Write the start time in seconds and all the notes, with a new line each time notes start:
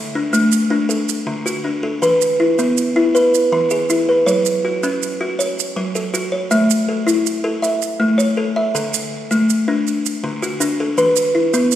Already playing: D3 A4
0.15 D4
0.33 A3, maracas
0.52 maracas
0.70 D4
0.89 A4, maracas
1.09 maracas
1.27 D3
1.46 F#4, maracas
1.64 D4
1.83 A4
2.02 E3 B4, maracas
2.22 maracas
2.40 E4
2.59 B3, maracas
2.77 maracas
2.96 E4
3.15 B4, maracas
3.34 maracas
3.52 E3
3.71 G#4, maracas
3.90 E4, maracas
4.09 B4
4.26 F#3 C#5, maracas
4.46 maracas
4.65 F#4
4.83 C#4, maracas
5.03 maracas
5.21 F#4
5.39 C#5, maracas
5.59 maracas
5.77 F#3
5.95 A4, maracas
6.14 F#4, maracas
6.32 C#5
6.51 A3 E5, maracas
6.70 maracas
6.88 A4
7.07 E4, maracas
7.26 maracas
7.44 A4
7.62 E5, maracas
7.82 maracas
8.00 A3
8.18 C#5, maracas
8.37 A4
8.56 E5
8.75 D3 A4, maracas
8.94 maracas
9.31 A3, maracas
9.50 maracas
9.68 D4
9.87 maracas
10.06 maracas
10.24 D3
10.42 F#4, maracas
10.60 D4, maracas
10.80 A4
10.98 E3 B4, maracas
11.16 maracas
11.35 E4
11.54 B3, maracas
11.72 maracas